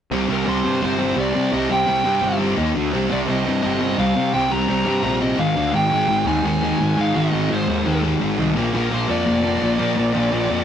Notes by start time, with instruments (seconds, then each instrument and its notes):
0.11 picked electric bass C2, distorted electric guitar C3 G3 C4
0.28 picked electric bass C2, distorted electric guitar C3 G3 C4
0.33 lead electric guitar A#4
0.46 picked electric bass C2, distorted electric guitar C3 G3 C4, lead electric guitar C5
0.64 picked electric bass G2, distorted electric guitar C3 G3 C4
0.82 picked electric bass G1, distorted electric guitar C3 G3 C4, lead electric guitar C5
0.99 distorted electric guitar C3 G3 C4
1.15 picked electric bass C2, distorted electric guitar C3 G3 C4
1.20 lead electric guitar D5
1.33 distorted electric guitar C3 G3 C4, picked electric bass C3
1.52 picked electric bass C2, distorted electric guitar C3 G3 C4, lead electric guitar D#5
1.70 picked electric bass C2, distorted electric guitar C3 G3 C4, lead electric guitar G5
1.87 picked electric bass C2, distorted electric guitar C3 G3 C4
2.04 picked electric bass G2, distorted electric guitar C3 G3 C4
2.21 picked electric bass G1, distorted electric guitar C3 G3 C4
2.38 distorted electric guitar C3 G3 C4
2.56 picked electric bass D#2, distorted electric guitar D#3 A#3 D#4
2.74 picked electric bass D2, distorted electric guitar D3 A3 D4
2.92 picked electric bass C2, distorted electric guitar C3 G3 C4
3.09 picked electric bass C2, distorted electric guitar C3 G3 C4, lead electric guitar D5
3.26 picked electric bass C2, distorted electric guitar C3 G3 C4
3.30 lead electric guitar D#5
3.44 picked electric bass G2, distorted electric guitar C3 G3 C4
3.62 picked electric bass G1, distorted electric guitar C3 G3 C4, lead electric guitar D#5
3.80 distorted electric guitar C3 G3 C4
3.97 picked electric bass C2, distorted electric guitar C3 G3 C4, lead electric guitar F5
4.15 distorted electric guitar C3 G3 C4, picked electric bass C3
4.33 picked electric bass C2, distorted electric guitar C3 G3 C4, lead electric guitar G5
4.51 picked electric bass C2, distorted electric guitar C3 G3 C4, lead electric guitar A#5
4.67 picked electric bass C2, distorted electric guitar C3 G3 C4
4.85 picked electric bass G2, distorted electric guitar C3 G3 C4
5.03 picked electric bass A#1, distorted electric guitar C3 G3 C4
5.20 distorted electric guitar C3 G3 C4, lead electric guitar D#5
5.38 picked electric bass G#1, distorted electric guitar G#2 D#3 G#3, lead electric guitar F5
5.56 picked electric bass D2, distorted electric guitar D3 A3 D4
5.71 picked electric bass G#1, distorted electric guitar G#2 D#3 G#3
5.76 lead electric guitar G5
5.91 picked electric bass G#1, distorted electric guitar G#2 D#3 G#3
6.08 picked electric bass G#1, distorted electric guitar G#2 D#3 G#3
6.25 picked electric bass D#2, distorted electric guitar G#2 D#3 G#3, lead electric guitar G#5
6.43 picked electric bass D#2, distorted electric guitar G#2 D#3 G#3, lead electric guitar G#5
6.62 distorted electric guitar G#2 D#3 G#3
6.79 picked electric bass G#1, distorted electric guitar G#2 D#3 G#3
6.97 picked electric bass G#2, distorted electric guitar G#2 D#3 G#3
7.01 lead electric guitar F5
7.14 picked electric bass G#1, distorted electric guitar G#2 D#3 G#3, lead electric guitar D#5
7.32 picked electric bass G#1, distorted electric guitar G#2 D#3 G#3
7.49 picked electric bass G#1, distorted electric guitar G#2 D#3 G#3
7.54 lead electric guitar C5
7.67 picked electric bass D#2, distorted electric guitar G#2 D#3 G#3
7.85 picked electric bass D#2, distorted electric guitar G#2 D#3 G#3
8.02 distorted electric guitar G#2 D#3 G#3
8.20 picked electric bass G#1, distorted electric guitar G#2 D#3 G#3
8.38 picked electric bass C2, distorted electric guitar G#2 D#3 G#3
8.55 picked electric bass A#1, distorted electric guitar A#2 F3 A#3
8.73 picked electric bass A#1, distorted electric guitar A#2 F3 A#3, lead electric guitar A#4
8.91 picked electric bass A#1, distorted electric guitar A#2 F3 A#3, lead electric guitar C5
9.08 picked electric bass F2, distorted electric guitar A#2 F3 A#3, lead electric guitar D5
9.25 picked electric bass F1, distorted electric guitar A#2 F3 A#3
9.43 distorted electric guitar A#2 F3 A#3
9.60 picked electric bass A#1, distorted electric guitar A#2 F3 A#3
9.78 distorted electric guitar A#2 F3 A#3, picked electric bass A#2
9.96 picked electric bass A#1, distorted electric guitar A#2 F3 A#3
10.13 picked electric bass A#1, distorted electric guitar A#2 F3 A#3
10.31 picked electric bass A#1, distorted electric guitar A#2 F3 A#3
10.49 picked electric bass F2, distorted electric guitar A#2 F3 A#3